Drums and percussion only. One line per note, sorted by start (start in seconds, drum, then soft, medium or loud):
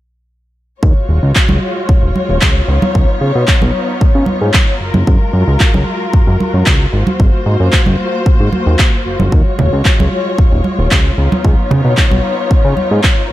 0.83 kick loud
1.35 kick loud
1.35 clap loud
1.49 high conga medium
1.89 kick loud
2.16 high conga medium
2.41 kick loud
2.41 clap loud
2.82 high conga medium
2.95 kick loud
3.48 kick loud
3.48 clap loud
3.62 high conga medium
4.01 kick loud
4.26 high conga medium
4.54 kick loud
4.54 clap loud
4.94 high conga medium
5.07 kick loud
5.60 kick loud
5.60 clap loud
5.74 high conga medium
6.13 kick loud
6.40 high conga medium
6.66 kick loud
6.66 clap loud
7.07 high conga medium
7.20 kick loud
7.73 kick loud
7.73 clap loud
7.86 high conga medium
8.26 kick loud
8.53 high conga medium
8.79 kick loud
8.79 clap loud
9.20 high conga medium
9.32 kick loud
9.59 low conga medium
9.85 kick loud
9.85 clap loud
10.00 high conga medium
10.38 kick loud
10.64 high conga medium
10.91 kick loud
10.91 clap loud
11.32 high conga medium
11.45 kick loud
11.71 low conga medium
11.97 kick loud
11.97 clap loud
12.12 high conga medium
12.51 kick loud
12.77 high conga medium
13.04 kick loud
13.04 clap loud